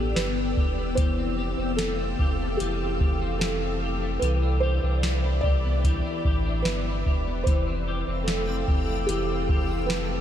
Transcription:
Already playing: sub bass A1, clean electric guitar E3 B3 D4 G4, ambient pad B3 D5 G5 E6, felt piano G4
0.15 sub bass G1, clean electric guitar B3, felt piano B4, snare, closed hi-hat
0.38 clean electric guitar D4
0.57 sub bass E1, clean electric guitar G4, kick
0.78 clean electric guitar B3
0.95 sub bass F1, clean electric guitar E3 G4, ambient pad A4 F5, felt piano C5, kick, closed hi-hat
1.00 ambient pad G5
1.18 clean electric guitar C4
1.39 clean electric guitar G4
1.58 sub bass F1, clean electric guitar C4
1.77 clean electric guitar A3, felt piano A4, snare, closed hi-hat
1.99 clean electric guitar C4
2.19 sub bass F1, clean electric guitar G4, kick
2.40 clean electric guitar A3
2.57 sub bass F1, clean electric guitar E3 G4, felt piano G4, closed hi-hat
2.81 clean electric guitar C4
3.01 clean electric guitar G4, kick
3.22 clean electric guitar C4
3.39 clean electric guitar A3, felt piano A4, snare, closed hi-hat
3.62 clean electric guitar C4
3.82 clean electric guitar G4
4.02 clean electric guitar A3
4.19 sub bass C2, clean electric guitar E3 G4, felt piano B4, ambient pad D5 E5 B5 D6, closed hi-hat
4.42 clean electric guitar D4
4.60 clean electric guitar G4, felt piano C5
4.83 sub bass C2, clean electric guitar D4
5.03 snare, closed hi-hat
5.24 clean electric guitar D4
5.41 sub bass C2, clean electric guitar G4, felt piano D5, kick
5.64 clean electric guitar B3
5.84 clean electric guitar E3 G4, kick, closed hi-hat
6.05 clean electric guitar D4
6.25 sub bass A1, clean electric guitar G4, kick
6.46 clean electric guitar D4
6.62 sub bass G1, felt piano B4, snare, closed hi-hat
6.66 clean electric guitar B3
6.87 clean electric guitar D4
7.06 sub bass E1, clean electric guitar G4, kick
7.27 clean electric guitar B3
7.44 sub bass F1, clean electric guitar E3, ambient pad A4 F5 G5 E6, felt piano C5, synth texture G5, kick, closed hi-hat
7.48 clean electric guitar G4
7.67 clean electric guitar C4
7.71 synth texture B5
7.88 clean electric guitar G4
7.99 synth texture A5
8.08 sub bass F1, clean electric guitar C4
8.24 felt piano A4, closed hi-hat
8.28 clean electric guitar A3, snare
8.49 clean electric guitar C4
8.68 sub bass F1, clean electric guitar G4, kick
8.89 clean electric guitar A3
9.06 sub bass F1, clean electric guitar E3 G4, felt piano G4, closed hi-hat
9.30 clean electric guitar C4
9.49 clean electric guitar G4, kick
9.70 clean electric guitar C4
9.86 felt piano B4, snare
9.90 clean electric guitar A3, closed hi-hat
10.11 clean electric guitar C4

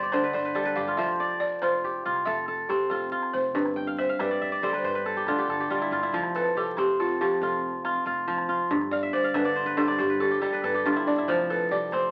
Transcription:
Already playing: kora G2 G3 C5 E5 G5
0.03 kora D5
0.12 upright bass D2, kora D3 C5, balafon C5, calabash thump, calabash click
0.24 kora B4
0.33 upright bass G1, kora C5, balafon D5
0.45 kora B4
0.55 kora G3 A4, calabash thump
0.65 kora B4, calabash click
0.76 upright bass G1, kora G4, balafon F5
0.88 kora F4
0.97 upright bass F1, kora F3 C5, balafon E5, calabash thump
1.09 calabash click
1.20 kora D5
1.40 balafon D5, calabash thump
1.51 calabash click
1.62 upright bass F1, kora F4, balafon C5, calabash click
1.83 kora G4, calabash thump
2.06 upright bass C2, kora F4
2.16 calabash click
2.26 upright bass F1, kora A4, balafon E5, calabash thump
2.48 kora A4
2.69 upright bass C2, kora C4, balafon G4, calabash thump, calabash click
2.90 upright bass F1, kora F4, balafon A4
3.12 kora F4, calabash thump
3.23 calabash click
3.33 upright bass F1, balafon C5
3.55 upright bass G1, kora G2, balafon B4, calabash thump
3.66 calabash click
3.76 kora G5
3.87 kora F5
3.98 balafon C5, kora E5, calabash thump
4.09 kora F5
4.19 upright bass G1, kora G3 E5, balafon B4, calabash click
4.31 kora D5
4.41 kora E5, calabash thump
4.52 kora D5
4.62 upright bass D2, kora G3 C5, balafon A4
4.73 kora B4, balafon C5, calabash click
4.84 upright bass G1, balafon B4, kora C5, calabash thump
4.95 kora B4
5.06 kora A4
5.16 kora G4, calabash click
5.26 upright bass D2, kora D3 F4, calabash thump, calabash click
5.39 kora G4
5.48 upright bass G1, kora A4
5.60 kora G4
5.70 kora G3 F4, calabash thump
5.80 kora E4, calabash click
5.91 upright bass G1, kora F4, calabash click
6.03 kora E4
6.12 upright bass F1, kora F3, calabash thump
6.23 calabash click
6.36 kora A4, balafon B4
6.55 upright bass C2, kora G4, balafon A4
6.77 upright bass F1, kora C4, balafon G4, calabash thump, calabash click
7.00 balafon F4, kora A4
7.21 kora F3, balafon G4
7.31 calabash click
7.41 upright bass F1, kora F4, balafon A4, calabash thump
7.85 kora F4, calabash click
8.05 upright bass F1, kora F4, calabash thump, calabash click
8.17 calabash click
8.28 kora F3
8.38 calabash click
8.49 kora F4
8.70 upright bass G1, kora G2, calabash thump
8.81 calabash click
8.91 balafon D5, kora F5
9.03 kora E5
9.13 upright bass D2, balafon C5, kora D5
9.24 kora F5
9.34 upright bass G1, kora D3 E5, balafon B4, calabash thump, calabash click
9.45 kora D5
9.56 kora C5
9.66 kora B4
9.77 kora G2 C5, balafon A4
9.88 kora D5, calabash click
9.99 upright bass G1, balafon G4, kora C5, calabash thump
10.10 kora B4
10.20 balafon G4, kora A4
10.31 kora G4
10.41 kora G3 A4, balafon A4, calabash click
10.53 kora B4
10.63 upright bass G1, kora A4, balafon B4, calabash thump, calabash click
10.74 kora G4, calabash click
10.86 kora G2 F4
10.96 kora E4, calabash click
11.07 kora D4, balafon D5
11.18 kora E4
11.28 upright bass F1, kora F3, balafon C5, calabash thump
11.39 calabash click
11.50 kora A4, balafon B4
11.71 upright bass C2, kora G4, balafon D5
11.92 upright bass F1, kora C4, balafon C5, calabash thump, calabash click

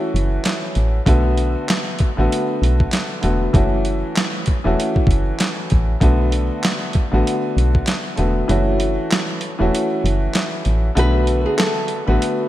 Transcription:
Already playing: upright piano E3 A3 C#4 F#4
0.14 fm bass F#1, closed hi-hat
0.45 snare, clap, closed hi-hat
0.75 fm bass A1, closed hi-hat
1.06 fm bass B1, upright piano D3 A3 B3 F#4, kick, closed hi-hat
1.38 closed hi-hat
1.69 snare, clap, closed hi-hat
1.99 kick, closed hi-hat
2.17 fm bass A1, upright piano D3 A3 B3 F#4
2.32 closed hi-hat
2.62 fm bass B1, closed hi-hat
2.80 kick
2.92 snare, clap, closed hi-hat
3.21 fm bass E1, upright piano D3 A3 B3 F#4, closed hi-hat
3.53 fm bass F#1, upright piano E3 A3 C#4 F#4, kick, closed hi-hat
3.85 closed hi-hat
4.17 snare, clap, closed hi-hat
4.46 kick, closed hi-hat
4.64 fm bass E1, upright piano E3 A3 C#4 F#4
4.80 closed hi-hat
4.96 kick
5.07 fm bass F#1, kick, closed hi-hat
5.40 snare, clap, closed hi-hat
5.70 fm bass A1, kick, closed hi-hat
6.00 fm bass B1, upright piano D3 A3 B3 F#4, kick, closed hi-hat
6.32 closed hi-hat
6.64 snare, clap, closed hi-hat
6.93 kick, closed hi-hat
7.12 fm bass A1, upright piano D3 A3 B3 F#4
7.27 closed hi-hat
7.57 fm bass B1, closed hi-hat
7.75 kick
7.87 snare, clap, closed hi-hat
8.16 fm bass E1, upright piano D3 A3 B3 F#4, closed hi-hat
8.48 fm bass F#1, upright piano E3 A3 C#4 F#4, closed hi-hat
8.80 closed hi-hat
9.12 snare, clap, closed hi-hat
9.41 closed hi-hat
9.59 fm bass E1, upright piano E3 A3 C#4 F#4
9.75 closed hi-hat
10.04 fm bass F#1, closed hi-hat
10.35 snare, clap, closed hi-hat
10.65 fm bass A1, closed hi-hat
10.95 fm bass B1, upright piano D3 A3 B3 F#4, nylon-string guitar B4, closed hi-hat
11.27 closed hi-hat
11.46 nylon-string guitar G#4
11.58 nylon-string guitar A4, snare, clap, closed hi-hat
11.88 closed hi-hat
12.07 fm bass A1, upright piano D3 A3 B3 F#4, nylon-string guitar B4
12.22 closed hi-hat

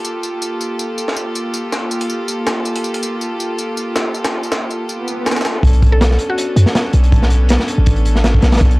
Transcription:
Already playing: string section A#3 F4 G4 A4
0.05 tambourine
0.23 tambourine
0.42 tambourine
0.61 tambourine
0.79 tambourine
0.98 tambourine
1.08 snare
1.16 tambourine
1.35 tambourine
1.54 tambourine
1.72 snare, tambourine
1.91 tambourine
2.01 closed hi-hat
2.10 tambourine
2.28 tambourine
2.47 snare, tambourine
2.65 tambourine
2.76 closed hi-hat
2.84 tambourine
2.94 closed hi-hat
3.03 tambourine
3.21 tambourine
3.40 tambourine
3.58 tambourine
3.77 tambourine
3.96 snare, tambourine
4.14 tambourine
4.24 snare, tambourine
4.43 tambourine
4.52 snare, tambourine
4.70 tambourine
4.89 tambourine, swell
5.08 tambourine
5.26 snare, tambourine
5.31 snare, tambourine
5.36 snare, tambourine
5.41 snare, tambourine
5.45 snare, tambourine
5.63 808-style bass B1, string section B3 C#4 D4 A4, kick, closed hi-hat
5.73 closed hi-hat
5.82 kick, closed hi-hat
5.92 synth pluck A4
6.01 snare, closed hi-hat
6.11 snare
6.19 closed hi-hat
6.30 synth pluck F#4
6.38 closed hi-hat
6.56 808-style bass F#2, closed hi-hat
6.66 snare
6.75 snare, closed hi-hat
6.93 808-style bass B1, closed hi-hat
7.04 closed hi-hat
7.12 kick, closed hi-hat
7.22 snare
7.30 closed hi-hat
7.49 snare, closed hi-hat
7.60 snare
7.68 closed hi-hat
7.78 808-style bass A1
7.86 kick, closed hi-hat
7.96 closed hi-hat
8.05 closed hi-hat
8.16 snare
8.24 snare, closed hi-hat
8.35 kick
8.42 808-style bass B1, snare, closed hi-hat
8.52 808-style bass A1, snare, closed hi-hat
8.56 snare, closed hi-hat
8.61 808-style bass B1, kick, closed hi-hat
8.71 closed hi-hat

